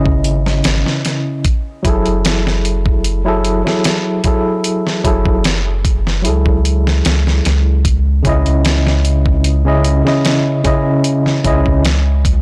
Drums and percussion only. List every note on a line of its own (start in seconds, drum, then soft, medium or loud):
0.06 kick medium
0.24 closed hi-hat medium
0.46 snare medium
0.64 snare loud
0.64 closed hi-hat medium
0.86 snare soft
1.05 snare soft
1.05 closed hi-hat medium
1.45 kick loud
1.45 closed hi-hat medium
1.85 kick loud
1.85 closed hi-hat medium
2.06 closed hi-hat soft
2.25 snare loud
2.25 closed hi-hat medium
2.47 snare medium
2.65 closed hi-hat medium
2.86 kick loud
3.04 closed hi-hat medium
3.45 closed hi-hat medium
3.67 snare soft
3.84 snare loud
3.84 closed hi-hat medium
4.24 kick medium
4.24 closed hi-hat medium
4.64 closed hi-hat medium
4.87 snare soft
5.05 kick loud
5.05 closed hi-hat medium
5.25 kick medium
5.44 snare loud
5.44 closed hi-hat medium
5.85 kick medium
5.85 closed hi-hat medium
6.07 snare soft
6.25 closed hi-hat medium
6.46 kick medium
6.65 closed hi-hat medium
6.87 snare soft
7.05 snare loud
7.05 closed hi-hat medium
7.27 snare soft
7.45 snare soft
7.45 closed hi-hat medium
7.85 kick loud
7.85 closed hi-hat medium
8.25 kick loud
8.25 closed hi-hat medium
8.46 closed hi-hat soft
8.65 snare loud
8.65 closed hi-hat medium
8.87 snare medium
9.05 closed hi-hat medium
9.26 kick medium
9.44 closed hi-hat medium
9.84 closed hi-hat medium
10.07 snare soft
10.25 snare loud
10.25 closed hi-hat medium
10.65 kick loud
10.65 closed hi-hat medium
11.04 closed hi-hat medium
11.26 snare soft
11.44 kick loud
11.44 closed hi-hat medium
11.66 kick medium
11.85 snare loud
11.85 closed hi-hat medium
12.25 kick loud
12.25 closed hi-hat medium